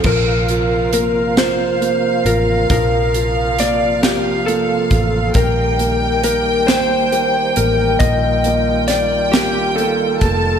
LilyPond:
<<
  \new Staff \with { instrumentName = "Violin section" } { \time 6/8 \key ees \lydian \tempo 4. = 45 f''2.~ | f''2. | g''2.~ | g''4 g''4. a''8 | }
  \new Staff \with { instrumentName = "Electric slide guitar" } { \time 6/8 \key ees \lydian bes'4 bes'8 c''4 bes'8 | bes'4 d''8 g'8 a'4 | bes'4 bes'8 c''4 bes'8 | ees''4 d''8 g'8 a'4 | }
  \new Staff \with { instrumentName = "Upright piano" } { \time 6/8 \key ees \lydian bes8 f'8 bes8 f'8 bes8 f'8 | f8 f'8 bes8 f'8 bes8 f'8 | bes8 bes8 bes8 bes8 bes8 bes8 | bes8 bes8 bes8 bes8 bes8 bes8 | }
  \new Staff \with { instrumentName = "Tonewheel organ" } { \time 6/8 \key ees \lydian f'2.~ | f'2. | g'2. | f'2. | }
  \new Staff \with { instrumentName = "Tonewheel organ" } { \clef bass \time 6/8 \key ees \lydian << { bes2.~ | bes2.~ | bes2.~ | bes2. | } \\ { <c f>2.~ | <c f>2. | <ees g>2.~ | <ees g>2. | } >> }
  \new Staff \with { instrumentName = "Fingered electric bass" } { \clef bass \time 6/8 \key ees \lydian bes,,2~ bes,,8 a,,8 | bes,,2~ bes,,8 a,,8 | bes,,2~ bes,,8 a,,8 | bes,,2~ bes,,8 f,,8 | }
  \new DrumStaff \with { instrumentName = "Drums" } \drummode { \time 6/8 <cymc bd>8 hh8 hh8 <hh sn>8 hh8 hh8 | <hh bd>8 hh8 <hh sn>8 <hh sn>8 hh8 <hh bd>8 | <hh bd>8 hh8 hh8 <hh sn>8 hh8 hh8 | <hh bd>8 hh8 <hh sn>8 <hh sn>8 hh8 <hh bd>8 | }
>>